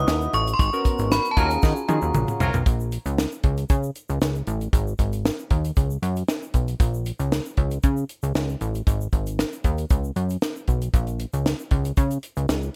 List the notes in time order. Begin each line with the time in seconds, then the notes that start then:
Already playing: D#4 E4 F#4 B4 D#6
0.07 D#2, snare, shaker
0.21 shaker
0.33 A1 C#6, closed hi-hat, shaker
0.47 closed hi-hat, shaker
0.54 C6
0.59 G#1 C#6, kick, closed hi-hat, shaker
0.73 B3 C#4 F#4 A#4, shaker
0.85 kick, closed hi-hat, shaker
0.99 G#1, closed hi-hat, shaker
1.12 B5, snare, shaker
1.25 closed hi-hat, shaker
1.31 A5
1.37 D#2 F#3 C#4 F4 F#4 G#4 A#4 A#5, kick, closed hi-hat, shaker
1.50 closed hi-hat, shaker
1.62 D#3, kick, snare, shaker
1.76 shaker
1.88 D#3 C#4 F4 F#4 G#4, high tom, shaker
2.02 D#2, shaker
2.14 A#1, mid tom, shaker
2.28 mid tom, shaker
2.40 C2 F#3 F4 A#4, floor tom, shaker
2.54 B1, floor tom, shaker
2.66 A#1, kick, closed hi-hat, shaker
2.80 shaker
2.92 closed hi-hat, shaker
3.06 C#2, closed hi-hat, shaker
3.18 snare, shaker
3.32 shaker
3.43 C#2, kick, closed hi-hat
3.57 closed hi-hat, shaker
3.69 C#3, kick, closed hi-hat, shaker
3.83 shaker
3.95 closed hi-hat, shaker
4.09 C#2, closed hi-hat, shaker
4.22 C#2, snare, shaker
4.35 shaker
4.47 A1, closed hi-hat, shaker
4.61 closed hi-hat, shaker
4.73 G#1, kick, closed hi-hat, shaker
4.87 shaker
4.99 G#1, kick, closed hi-hat, shaker
5.13 closed hi-hat, shaker
5.25 snare, shaker
5.39 shaker
5.50 D#2, kick, closed hi-hat
5.64 closed hi-hat, shaker
5.76 C#2, kick, closed hi-hat, shaker
5.90 shaker
6.02 F#2, closed hi-hat, shaker
6.16 closed hi-hat, shaker
6.28 snare, shaker
6.42 shaker
6.53 B1, kick, closed hi-hat, shaker
6.68 closed hi-hat, shaker
6.80 A#1, kick, closed hi-hat, shaker
6.94 shaker
7.06 closed hi-hat, shaker
7.19 C#2, closed hi-hat, shaker
7.32 snare, shaker
7.45 shaker
7.57 C#2, kick, closed hi-hat
7.71 closed hi-hat, shaker
7.83 C#3, kick, closed hi-hat, shaker
7.97 shaker
8.09 closed hi-hat, shaker
8.23 C#2, closed hi-hat, shaker
8.35 C#2, snare, shaker
8.49 shaker
8.61 A1, closed hi-hat, shaker
8.75 closed hi-hat, shaker
8.87 G#1, kick, closed hi-hat, shaker
9.01 shaker
9.13 G#1, kick, closed hi-hat, shaker
9.27 closed hi-hat, shaker
9.39 snare, shaker
9.52 closed hi-hat, shaker
9.64 D#2, kick, closed hi-hat, shaker
9.78 closed hi-hat, shaker
9.90 C#2, kick, closed hi-hat, shaker
10.04 shaker
10.16 F#2, closed hi-hat, shaker
10.30 closed hi-hat, shaker
10.42 snare, shaker
10.56 shaker
10.67 B1, kick, closed hi-hat, shaker
10.81 closed hi-hat, shaker
10.93 A#1, kick, closed hi-hat, shaker
11.07 closed hi-hat, shaker
11.19 closed hi-hat, shaker
11.33 C#2, closed hi-hat, shaker
11.46 snare, shaker
11.59 shaker
11.71 C#2, kick, closed hi-hat
11.85 closed hi-hat, shaker
11.97 C#3, kick, closed hi-hat, shaker
12.10 closed hi-hat, shaker
12.23 closed hi-hat, shaker
12.36 C#2, closed hi-hat, shaker
12.49 C#2, snare, shaker
12.63 shaker